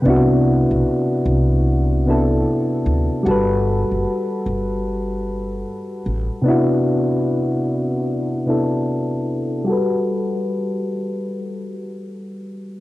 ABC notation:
X:1
M:4/4
L:1/16
Q:"Swing 16ths" 1/4=75
K:Clyd
V:1 name="Synth keys"
[C,B,DEF]8- [C,B,DEF]2 [C,B,DEA]6 | [G,FAB]16 | [C,B,DEF]8- [C,B,DEF]2 [C,B,DEA]6 | [G,FAB]16 |]
V:2 name="Upright bass" clef=bass
C,,3 B,,, z2 C,,6 z2 D,, z | G,,,3 F,,, z2 G,,,6 z2 A,,, z | z16 | z16 |]